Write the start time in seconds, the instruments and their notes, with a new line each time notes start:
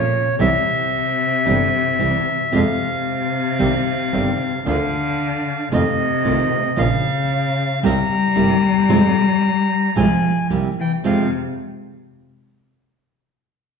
Already playing: cello A#2, bandoneon C#5
0.39 double bass C2, cello C3, nylon-string guitar C3 E3 G3 C4 E4, bandoneon E5
1.46 double bass G1, nylon-string guitar C3 E3 G3 C4 E4
1.99 double bass C2, nylon-string guitar C3 E3 G3 C4 E4
2.52 double bass F2, nylon-string guitar C3 F3 G#3 C4 F4, cello C3, bandoneon F5
3.59 double bass C2, nylon-string guitar C3 D#3 G3 C4 G4
4.12 double bass G1, nylon-string guitar C3 D#3 G3 C4 G4
4.66 double bass D2, nylon-string guitar D3 A#3 D4 F4, cello D3, bandoneon F5
5.72 double bass F2, nylon-string guitar C3 D#3 A3 C4 F4, cello C3, bandoneon D#5
6.25 double bass C2, nylon-string guitar C3 D#3 A3 C4 F4
6.76 double bass A#1, cello C#3, nylon-string guitar F3 A#3 C#4 F4, bandoneon F5
7.83 double bass C2, nylon-string guitar C3 G3 A#3 E4 G4, cello G3, bandoneon A#5
8.36 double bass G1, nylon-string guitar C3 G3 A#3 E4 G4
8.63 double bass D#2
8.89 double bass F2, nylon-string guitar C3 F3 G#3 C4 F4
9.96 double bass C2, nylon-string guitar C3 F3 G#3 C4 F4, cello F3, bandoneon G#5
10.50 double bass C2, nylon-string guitar C3 G3 A#3 E4 G4
10.79 cello E3, bandoneon G5
11.04 nylon-string guitar F2 C3 F3 G#3 C4 F4, double bass F2, cello C3, bandoneon F5